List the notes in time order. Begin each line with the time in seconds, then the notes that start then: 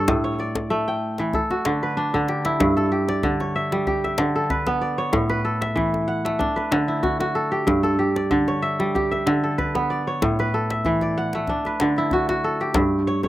Already playing: G2 D3 G4 A4 B4 C#5 E5
0.08 A2, djembe slap, djembe bass
0.24 C#5
0.39 D5, djembe slap
0.55 djembe slap, djembe tone
0.70 A3, djembe slap
0.88 G5
1.18 E3, djembe slap
1.33 A4, djembe slap, djembe bass
1.51 F#4, djembe tone
1.65 D3, djembe slap
1.83 B4
1.97 D4
2.14 D3, djembe bass
2.28 G4, djembe slap
2.45 E4, djembe slap
2.60 G2, djembe slap, djembe bass
2.77 A4, djembe slap, djembe tone
2.92 G4
3.08 D5, djembe slap
3.23 D3, djembe bass
3.40 C#5, djembe tone
3.56 E5
3.72 G3, djembe slap
3.87 G4, djembe bass
4.04 E5, djembe tone
4.18 D3, djembe slap
4.36 A4
4.50 B4, djembe bass
4.67 B3, djembe slap, djembe tone
4.81 D5
4.98 C#5
5.13 A2, djembe slap, djembe bass
5.30 B4, djembe slap, djembe tone
5.45 A4
5.61 E5, djembe slap
5.76 E3, djembe bass
5.94 djembe tone
6.08 F#5
6.25 A3, djembe slap
6.39 D4, djembe bass
6.56 B4, djembe tone
6.72 D3, djembe slap
6.88 E4
7.03 F#4, djembe bass
7.20 F#4, djembe slap, djembe tone
7.35 A4
7.52 G4
7.67 G2, djembe slap, djembe bass
7.83 A4, djembe slap, djembe tone
7.99 G4
8.16 D5, djembe slap
8.31 D3, djembe bass
8.48 C#5, djembe tone
8.62 E5
8.79 G3, djembe slap
8.95 G4, djembe bass
9.11 E5, djembe tone
9.27 D3, djembe slap
9.44 A4
9.58 B4, djembe bass
9.75 B3, djembe slap, djembe tone
9.90 D5
10.07 C#5
10.22 A2, djembe slap, djembe bass
10.39 B4, djembe tone
10.54 A4, djembe slap
10.70 E5, djembe slap
10.85 E3, djembe bass
11.01 D5, djembe slap, djembe tone
11.18 F#5
11.33 A3, djembe slap
11.47 D4, djembe bass
11.65 B4, djembe slap, djembe tone
11.80 D3, djembe slap
11.96 E4, djembe slap
12.11 F#4, djembe bass
12.29 F#4, djembe slap, djembe tone
12.44 A4
12.60 G4, djembe slap
12.74 G2, djembe slap, djembe bass
13.07 C#5
13.23 C#5, djembe tone